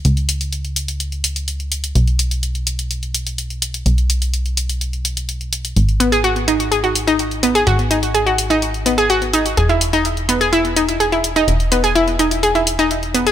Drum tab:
HH |xxxxxxxxxxxxxxxx|xxxxxxxxxxxxxxxx|xxxxxxxxxxxxxxxx|xxxxxxxxxxxxxxxx|

HH |xxxxxxxxxxxxxxxx|xxxxxxxxxxxxxxxx|xxxxxxxxxxxxxxxx|